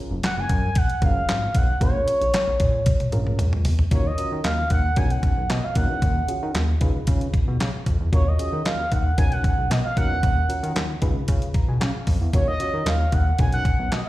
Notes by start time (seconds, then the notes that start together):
Already playing: C#4 F4 G#4 A#4
0.11 F#1
0.23 F#5, snare, clap, closed hi-hat
0.37 F#1 G#5
0.49 F#2, kick, closed hi-hat
0.75 F#5, kick, closed hi-hat
0.90 closed hi-hat
1.02 F#1 C#4 F4 G#4 A#4 F5, kick, closed hi-hat
1.28 G#1, snare, clap, closed hi-hat
1.55 B1 F#5, kick, closed hi-hat
1.80 A#1 C#4 F4 G#4 A#4 C#5, kick, closed hi-hat
2.08 closed hi-hat
2.21 A#1, closed hi-hat
2.34 snare, clap, closed hi-hat
2.48 A#1
2.60 A#2, kick, closed hi-hat
2.86 kick, closed hi-hat, high tom
3.00 closed hi-hat, high tom
3.12 A#1 C#4 F4 G#4 A#4, closed hi-hat, mid tom
3.27 mid tom
3.39 C#2, closed hi-hat, mid tom
3.53 mid tom
3.65 E2, floor tom, open hi-hat
3.79 floor tom
3.91 D#2 C#4 F4 F#4 A#4 C#5, kick, closed hi-hat
4.06 D#5
4.17 C#4 F4 F#4 A#4, closed hi-hat
4.32 D#3
4.44 D#2 F5, snare, clap, closed hi-hat
4.70 D#2 F#5, kick, closed hi-hat
4.96 B1 C#4 D4 F#4 A#4 G#5, kick, closed hi-hat
5.03 D#4
5.10 F#5, closed hi-hat
5.23 kick, closed hi-hat
5.37 B1
5.50 B2 D#5, snare, clap, closed hi-hat
5.64 F5
5.75 D#2 C#4 D#4 F#4 A#4 F#5, kick, closed hi-hat
5.90 E2
6.02 D#2, kick, closed hi-hat
6.28 C#4 F4 F#4 G#4, closed hi-hat
6.43 D#3
6.55 D#2, snare, clap, closed hi-hat
6.80 C#2 D#4 F4 G#4 B4, kick, closed hi-hat
7.07 C#3, kick, closed hi-hat
7.21 closed hi-hat
7.34 kick, closed hi-hat
7.48 B2
7.60 C#3, snare, clap, closed hi-hat
7.86 F2, kick, closed hi-hat
8.00 E2
8.12 D#2 C#4 F4 F#4 A#4 C#5, kick, closed hi-hat
8.28 D#5
8.39 C#4 F4 F#4 G#4, closed hi-hat
8.53 D#3
8.65 D#2 F5, snare, clap, closed hi-hat
8.92 D#2 F#5, kick, closed hi-hat
9.18 B1 C#4 D#4 F#4 A#4 G#5, kick, closed hi-hat
9.32 F#5, closed hi-hat
9.44 kick, closed hi-hat
9.58 B1
9.70 B2 D#5, snare, clap, closed hi-hat
9.85 F5
9.96 D#2 C#4 D#4 F#4 A#4 F#5, kick, closed hi-hat
10.10 E2
10.23 D#2, kick, closed hi-hat
10.49 C#4 F4 F#4 A#4, closed hi-hat
10.63 D#3, closed hi-hat
10.75 D#2, snare, clap, closed hi-hat
11.01 C#2 D#4 F4 G#4 B4, kick, closed hi-hat
11.28 C#3, kick, closed hi-hat
11.42 closed hi-hat
11.54 A#5, kick, closed hi-hat
11.68 B2 G#5
11.81 C#3 F5, snare, clap, closed hi-hat
12.07 F2, kick, open hi-hat
12.21 E2
12.33 D#2 C#4 F4 F#4 A#4 C#5, kick, closed hi-hat
12.48 D#5
12.59 C#4 F4 F#4 C#5, closed hi-hat
12.74 D#3
12.86 D#2 F5, snare, clap, closed hi-hat
13.12 D#2 F#5, kick, closed hi-hat
13.38 B1 C#4 D4 F#4 A#4 G#5, kick, closed hi-hat
13.45 D#4
13.52 F#5, closed hi-hat
13.65 kick, closed hi-hat
13.79 B1
13.92 B2 D#5, snare, clap, closed hi-hat